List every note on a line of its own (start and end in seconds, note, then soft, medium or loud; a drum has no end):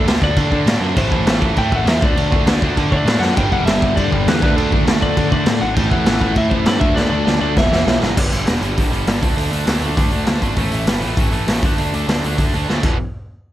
0.04 0.18 D2 medium
0.04 0.23 A3 medium
0.04 0.22 D4 loud
0.04 crash medium
0.08 0.21 D3 medium
0.08 snare loud
0.22 0.34 D2 medium
0.22 0.38 D3 loud
0.22 0.38 A3 medium
0.22 0.36 D4 loud
0.22 0.79 D5 loud
0.22 kick medium
0.36 0.49 D3 loud
0.36 0.50 D3 medium
0.36 0.52 A3 medium
0.36 0.51 D4 loud
0.36 kick medium
0.36 crash medium
0.52 0.67 D3 loud
0.52 0.65 D3 medium
0.52 0.67 A3 loud
0.52 0.65 D4 loud
0.52 kick medium
0.66 0.79 A2 loud
0.66 0.80 D3 medium
0.66 0.82 A3 medium
0.66 0.82 D4 loud
0.66 snare loud
0.66 crash medium
0.80 0.94 F#2 loud
0.80 0.95 D3 medium
0.80 0.96 A3 loud
0.80 0.96 D4 loud
0.95 1.09 A1 loud
0.95 1.11 A2 medium
0.95 1.11 E3 loud
0.95 1.11 A3 loud
0.95 1.39 C5 medium
0.95 kick loud
0.95 crash medium
1.11 1.25 A1 medium
1.11 1.24 A2 medium
1.11 1.25 E3 medium
1.11 1.26 A3 medium
1.11 kick medium
1.25 1.52 A1 loud
1.25 1.40 A2 medium
1.25 1.40 E3 loud
1.25 1.38 A3 loud
1.25 snare loud
1.25 crash medium
1.40 1.54 A2 medium
1.40 1.54 E3 loud
1.40 1.55 A3 loud
1.40 kick loud
1.55 1.72 A2 loud
1.55 1.70 A2 medium
1.55 1.71 E3 medium
1.55 1.71 A3 loud
1.55 1.73 G5 loud
1.55 kick medium
1.55 crash medium
1.72 1.85 A1 loud
1.72 1.84 A2 medium
1.72 1.84 E3 medium
1.72 1.85 A3 loud
1.72 1.88 F#5 medium
1.72 kick medium
1.85 1.99 E2 loud
1.85 2.00 A2 loud
1.85 2.00 E3 loud
1.85 2.00 A3 loud
1.85 2.03 E5 loud
1.85 snare loud
1.85 crash medium
2.01 2.15 D2 loud
2.01 2.15 D3 loud
2.01 2.16 A3 loud
2.01 2.15 D4 loud
2.01 2.58 D5 medium
2.01 kick loud
2.15 2.29 D2 medium
2.15 2.28 D3 medium
2.15 2.29 A3 loud
2.15 2.31 D4 loud
2.15 crash medium
2.30 2.45 D2 medium
2.30 2.46 D3 medium
2.30 2.45 A3 loud
2.30 2.46 D4 loud
2.30 kick medium
2.46 2.59 D2 loud
2.46 2.60 D3 medium
2.46 2.61 A3 medium
2.46 2.63 D4 loud
2.46 snare loud
2.46 crash medium
2.62 2.75 D2 medium
2.62 2.77 D3 medium
2.62 2.76 A3 loud
2.62 2.77 D4 loud
2.62 kick medium
2.77 2.90 D3 loud
2.77 2.91 D3 medium
2.77 2.92 A3 medium
2.77 2.92 D4 medium
2.77 kick medium
2.77 crash medium
2.92 3.06 D3 medium
2.92 3.04 D3 medium
2.92 3.06 A3 medium
2.92 3.05 D4 loud
2.92 3.23 D5 loud
2.92 kick medium
3.05 3.18 A2 medium
3.05 3.20 D3 medium
3.05 3.21 A3 loud
3.05 3.23 D4 loud
3.05 snare loud
3.05 crash medium
3.19 3.33 F#2 loud
3.19 3.35 D3 medium
3.19 3.36 A3 medium
3.19 4.42 D4 loud
3.19 3.36 F#5 loud
3.19 snare medium
3.35 3.50 G1 loud
3.35 3.52 G2 loud
3.35 3.51 D3 loud
3.35 3.51 G3 loud
3.35 3.52 G5 loud
3.35 kick loud
3.35 crash medium
3.52 3.64 G1 medium
3.52 3.66 G2 medium
3.52 3.67 D3 medium
3.52 3.67 G3 loud
3.52 3.65 F#5 loud
3.52 kick medium
3.66 3.92 G1 medium
3.66 3.83 G2 medium
3.66 3.82 D3 loud
3.66 3.81 G3 loud
3.66 3.97 E5 loud
3.66 snare loud
3.66 crash medium
3.82 3.96 G2 medium
3.82 3.97 D3 loud
3.82 3.98 G3 medium
3.82 kick loud
3.96 4.10 G2 medium
3.96 4.12 G2 loud
3.96 4.11 D3 medium
3.96 4.11 G3 loud
3.96 4.27 D5 loud
3.96 kick loud
3.96 crash medium
4.12 4.25 G1 medium
4.12 4.25 G2 medium
4.12 4.25 D3 loud
4.12 4.26 G3 loud
4.12 kick medium
4.27 4.40 E2 loud
4.27 4.41 G2 loud
4.27 4.41 D3 loud
4.27 4.41 G3 loud
4.27 4.43 B4 medium
4.27 snare loud
4.27 crash medium
4.42 4.55 D2 loud
4.42 4.56 D3 medium
4.42 4.56 A3 loud
4.42 4.55 D4 loud
4.42 4.56 B4 loud
4.42 kick loud
4.56 4.70 D2 loud
4.56 4.70 D3 medium
4.56 4.72 A3 medium
4.56 4.71 D4 loud
4.56 4.86 A4 medium
4.56 crash medium
4.71 4.85 D2 medium
4.71 4.86 D3 medium
4.71 4.86 A3 loud
4.71 4.84 D4 loud
4.71 kick medium
4.85 4.99 D2 loud
4.85 5.00 D3 medium
4.85 5.02 A3 medium
4.85 5.02 D4 loud
4.85 snare loud
4.85 crash medium
5.01 5.15 D2 medium
5.01 5.16 D3 loud
5.01 5.16 A3 loud
5.01 5.15 D4 loud
5.01 5.30 D5 loud
5.01 kick medium
5.16 5.29 D3 medium
5.16 5.30 D3 loud
5.16 5.30 A3 loud
5.16 5.30 D4 loud
5.16 kick loud
5.16 crash medium
5.30 5.46 D3 medium
5.30 5.45 D3 loud
5.30 5.47 A3 loud
5.30 5.45 D4 loud
5.30 5.63 D5 loud
5.30 kick medium
5.46 5.60 A2 medium
5.46 5.59 D3 medium
5.46 5.60 A3 loud
5.46 5.61 D4 loud
5.46 snare loud
5.46 crash medium
5.60 5.75 G#1 loud
5.60 5.75 D3 medium
5.60 5.76 A3 loud
5.60 5.76 D4 medium
5.60 5.75 F#5 loud
5.75 5.89 A1 loud
5.75 5.91 A2 loud
5.75 5.90 E3 loud
5.75 5.90 A3 loud
5.75 5.91 G5 loud
5.75 kick loud
5.75 crash medium
5.91 6.05 A1 loud
5.91 6.04 A2 medium
5.91 6.05 E3 medium
5.91 6.06 A3 loud
5.91 6.37 F#5 loud
5.91 kick medium
6.05 6.32 A1 loud
6.05 6.21 A2 medium
6.05 6.20 E3 medium
6.05 6.19 A3 loud
6.05 snare loud
6.05 crash medium
6.20 6.35 A2 medium
6.20 6.35 E3 medium
6.20 6.36 A3 loud
6.20 kick medium
6.36 6.49 A2 loud
6.36 6.50 A2 medium
6.36 6.50 E3 medium
6.36 6.49 A3 loud
6.36 6.52 E5 medium
6.36 kick loud
6.36 crash medium
6.50 6.64 A1 loud
6.50 6.64 A2 medium
6.50 6.65 E3 loud
6.50 6.65 A3 loud
6.50 6.66 C5 medium
6.50 kick medium
6.65 6.80 G2 loud
6.65 6.78 A2 loud
6.65 6.79 E3 loud
6.65 6.79 A3 loud
6.65 6.82 D5 loud
6.65 snare loud
6.65 crash medium
6.79 6.94 D2 loud
6.79 6.94 D3 loud
6.79 6.94 A3 loud
6.79 6.93 D4 loud
6.79 6.95 E5 loud
6.79 kick loud
6.95 7.10 D2 loud
6.95 7.09 D3 medium
6.95 7.10 A3 loud
6.95 7.10 D4 loud
6.95 7.09 D5 loud
6.95 snare medium
7.10 7.24 D2 medium
7.10 7.24 D3 loud
7.10 7.24 A3 medium
7.10 7.23 D4 loud
7.10 7.38 D5 medium
7.24 7.40 D2 loud
7.24 7.38 D3 medium
7.24 7.40 A3 loud
7.24 7.40 D4 medium
7.24 snare medium
7.39 7.59 D2 medium
7.39 7.54 D3 loud
7.39 7.55 A3 loud
7.39 7.55 D4 loud
7.39 7.57 D5 medium
7.55 7.70 E1 loud
7.55 7.70 E2 loud
7.55 7.70 B2 loud
7.55 7.69 E3 loud
7.55 7.99 E5 medium
7.55 kick loud
7.55 snare medium
7.70 7.84 E2 loud
7.70 7.84 E2 medium
7.70 7.84 B2 medium
7.70 7.85 E3 loud
7.70 snare medium
7.85 8.00 B1 medium
7.85 8.00 E2 loud
7.85 7.99 B2 loud
7.85 7.99 E3 loud
7.85 snare loud
8.00 8.15 G1 medium
8.00 8.15 E2 medium
8.00 8.15 B2 medium
8.00 8.15 E3 loud
8.00 snare loud
8.16 8.31 G1 loud
8.16 8.30 G2 loud
8.16 8.30 D3 loud
8.16 8.29 G3 loud
8.16 kick loud
8.16 crash loud
8.30 8.46 G1 medium
8.30 8.44 G2 medium
8.30 8.46 D3 medium
8.30 8.46 G3 medium
8.30 open hi-hat medium
8.46 8.61 E1 medium
8.46 8.62 G2 medium
8.46 8.62 D3 medium
8.46 8.61 G3 medium
8.46 snare loud
8.46 open hi-hat medium
8.61 8.75 G1 medium
8.61 8.76 G2 medium
8.61 8.76 D3 loud
8.61 8.77 G3 medium
8.61 open hi-hat medium
8.77 8.91 G1 medium
8.77 8.92 G2 medium
8.77 8.91 D3 medium
8.77 8.90 G3 medium
8.77 kick loud
8.77 open hi-hat medium
8.91 9.06 G1 medium
8.91 9.07 G2 medium
8.91 9.07 D3 loud
8.91 9.07 G3 loud
8.91 open hi-hat medium
9.07 9.21 G1 medium
9.07 9.21 G2 medium
9.07 9.21 D3 medium
9.07 9.22 G3 loud
9.07 snare loud
9.07 open hi-hat medium
9.22 9.36 D2 medium
9.22 9.37 D3 loud
9.22 9.37 A3 loud
9.22 9.36 D4 loud
9.22 kick loud
9.22 open hi-hat medium
9.36 9.50 D2 loud
9.36 9.50 D3 medium
9.36 9.51 A3 loud
9.36 9.51 D4 loud
9.36 open hi-hat medium
9.52 9.66 D2 medium
9.52 9.66 D3 medium
9.52 9.66 A3 loud
9.52 9.64 D4 medium
9.52 open hi-hat medium
9.65 9.81 D2 loud
9.65 9.80 D3 medium
9.65 9.82 A3 medium
9.65 9.81 D4 medium
9.65 snare loud
9.65 open hi-hat medium
9.81 9.96 D2 medium
9.81 9.97 D3 medium
9.81 9.97 A3 loud
9.81 9.95 D4 loud
9.81 open hi-hat medium
9.96 10.11 D2 loud
9.96 10.10 D3 medium
9.96 10.11 A3 loud
9.96 10.11 D4 medium
9.96 kick loud
9.96 open hi-hat medium
10.11 10.26 D2 loud
10.11 10.25 D3 loud
10.11 10.25 A3 loud
10.11 10.23 D4 loud
10.11 open hi-hat medium
10.25 10.41 D2 loud
10.25 10.41 D3 medium
10.25 10.43 A3 medium
10.25 10.42 D4 medium
10.25 snare loud
10.25 open hi-hat medium
10.42 10.56 G#1 medium
10.42 10.56 D3 medium
10.42 10.58 A3 loud
10.42 10.57 D4 loud
10.42 kick medium
10.42 open hi-hat medium
10.56 10.71 A1 loud
10.56 10.73 A2 medium
10.56 10.72 E3 medium
10.56 10.72 A3 loud
10.56 kick loud
10.56 open hi-hat medium
10.72 10.86 A1 medium
10.72 10.86 A2 medium
10.72 10.86 E3 medium
10.72 10.87 A3 medium
10.72 open hi-hat medium
10.86 11.01 G1 loud
10.86 11.01 A2 medium
10.86 11.01 E3 medium
10.86 11.00 A3 medium
10.86 snare loud
10.86 open hi-hat medium
11.02 11.16 A1 medium
11.02 11.17 A2 medium
11.02 11.17 E3 medium
11.02 11.18 A3 medium
11.02 open hi-hat medium
11.17 11.31 A1 loud
11.17 11.33 A2 medium
11.17 11.32 E3 loud
11.17 11.31 A3 medium
11.17 kick loud
11.17 open hi-hat medium
11.32 11.46 A1 medium
11.32 11.47 A2 medium
11.32 11.47 E3 loud
11.32 11.48 A3 loud
11.32 open hi-hat medium
11.47 11.61 A1 medium
11.47 11.62 A2 medium
11.47 11.62 E3 medium
11.47 11.62 A3 medium
11.47 snare loud
11.47 open hi-hat medium
11.62 11.76 D2 medium
11.62 11.79 D3 loud
11.62 11.79 A3 loud
11.62 11.78 D4 loud
11.62 kick loud
11.62 open hi-hat medium
11.78 11.92 D2 medium
11.78 11.93 D3 medium
11.78 11.93 A3 medium
11.78 11.93 D4 loud
11.78 open hi-hat medium
11.92 12.06 D2 medium
11.92 12.07 D3 medium
11.92 12.07 A3 medium
11.92 12.06 D4 medium
11.92 open hi-hat medium
12.07 12.21 D2 medium
12.07 12.23 D3 medium
12.07 12.23 A3 medium
12.07 12.24 D4 medium
12.07 snare loud
12.07 open hi-hat medium
12.24 12.37 D2 medium
12.24 12.38 D3 medium
12.24 12.38 A3 medium
12.24 12.37 D4 medium
12.24 open hi-hat medium
12.38 12.52 D2 medium
12.38 12.53 D3 medium
12.38 12.53 A3 medium
12.38 12.54 D4 loud
12.38 kick medium
12.38 open hi-hat medium
12.54 12.67 D2 medium
12.54 12.68 D3 loud
12.54 12.68 A3 medium
12.54 12.67 D4 loud
12.54 open hi-hat medium
12.69 12.82 D2 medium
12.69 12.83 D3 medium
12.69 12.84 A3 medium
12.69 12.83 D4 medium
12.69 snare medium
12.83 12.97 E1 medium
12.83 12.95 E2 medium
12.83 12.95 B2 loud
12.83 12.96 E3 medium
12.83 kick loud
12.83 crash medium